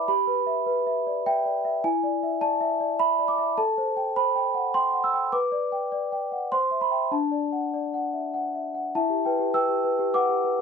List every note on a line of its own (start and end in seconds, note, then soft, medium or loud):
0.00 0.11 E4 medium
0.00 0.11 B4 medium
0.00 0.10 D5 soft
0.00 0.11 E5 soft
0.00 0.11 G5 medium
0.00 0.10 D6 medium
0.08 1.79 G4 medium
0.08 1.25 B5 medium
0.27 0.58 B4 soft
0.47 0.78 E5 medium
0.66 0.98 B4 medium
0.87 1.17 E5 medium
1.07 1.26 D5 soft
1.26 1.57 E5 medium
1.26 1.84 G5 medium
1.46 1.64 D5 soft
1.65 1.84 E5 medium
1.84 3.54 E4 medium
1.84 2.42 G#5 medium
2.03 2.34 D5 medium
2.23 2.53 E5 medium
2.41 2.72 D5 medium
2.41 2.99 A5 loud
2.61 2.92 E5 medium
2.80 3.00 D5 soft
2.99 3.30 E5 medium
2.99 3.29 B5 loud
3.19 3.38 D5 medium
3.28 3.57 D6 medium
3.38 3.58 E5 medium
3.58 5.29 A4 medium
3.58 4.16 A5 loud
3.78 4.08 C5 medium
3.97 4.28 G5 medium
4.16 4.47 C5 medium
4.16 4.75 B5 loud
4.36 4.67 G5 medium
4.54 4.74 F#5 soft
4.74 5.06 G5 medium
4.74 5.04 C6 loud
4.93 5.13 F#5 soft
5.04 5.33 E6 loud
5.14 5.33 G5 medium
5.33 6.48 B4 medium
5.33 6.51 D6 medium
5.52 5.84 D5 medium
5.72 6.04 G5 medium
5.92 6.24 D5 medium
6.12 6.44 G5 medium
6.32 6.52 F#5 soft
6.52 7.11 C5 medium
6.52 6.82 C6 medium
6.71 6.90 E5 soft
6.81 7.12 B5 medium
6.91 7.10 E5 soft
6.91 7.10 G5 soft
7.11 8.91 D4 medium
7.11 8.65 A5 medium
7.31 7.64 D5 soft
7.52 7.85 F#5 soft
7.74 8.06 D5 soft
7.94 8.26 F#5 soft
8.13 8.34 E5 soft
8.34 8.67 F#5 soft
8.55 8.75 E5 soft
8.74 8.95 F#5 soft
8.95 10.62 E4 medium
8.95 9.24 E5 medium
8.95 9.25 A5 medium
9.10 9.34 G4 soft
9.25 9.53 B4 soft
9.25 9.54 G5 medium
9.39 9.64 G4 soft
9.54 9.78 B4 medium
9.54 10.11 G5 medium
9.54 10.14 E6 medium
9.69 9.93 G4 soft
9.84 10.08 B4 soft
9.99 10.23 G4 medium
10.14 10.38 B4 medium
10.14 10.62 F#5 medium
10.14 10.62 D6 loud
10.29 10.53 G4 soft
10.44 10.62 B4 soft